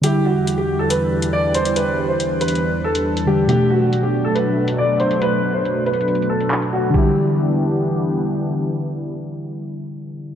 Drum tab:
CC |------------------------------------------------|------------------------------------------------|------------------------------------------------|------------------------------------------------|
HH |x-----------x-----------x--------x--------x--x--|x-----------x-----x-x-x----------x-----x--------|x-----------x-----------x--------x--------x--x--|x-----------x-----x-x-x-x-x-x----x-----x--------|
CP |------------------------------------------------|------------------------------------------------|------------------------------------------------|------------------------------------x-----------|
BD |------------------------------------------------|------------------------------------------------|------------------------------------------------|------------------------------------------------|

CC |x-----------------------------------------------|------------------------------------------------|
HH |------------------------------------------------|------------------------------------------------|
CP |------------------------------------------------|------------------------------------------------|
BD |o-----------------------------------------------|------------------------------------------------|